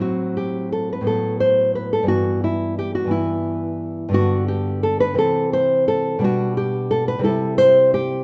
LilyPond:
\new Staff \with { instrumentName = "Nylon-string guitar" } { \time 6/8 \key e \minor \tempo 4. = 58 << { fis'8 g'8 a'16 b'16 a'8 c''8 b'16 a'16 | fis'8 e'8 g'16 fis'16 e'4. | \key g \major fis'8 g'8 a'16 b'16 a'8 c''8 a'8 | fis'8 g'8 a'16 b'16 a'8 c''8 g'8 | } \\ { <a, fis c'>4. <a, fis b>4. | <g, e b>4. <g, e b>4. | <g, d b>4. <c e c'>4. | <b, g d'>4. <c g e'>4. | } >> }